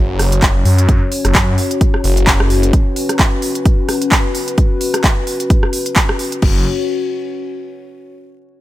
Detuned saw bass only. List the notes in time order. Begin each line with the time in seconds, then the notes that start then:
Already playing: F#1
0.42 F#1
0.65 F#2
1.25 F#1
1.35 F#2
2.04 F#1
2.40 F#1
6.42 F#1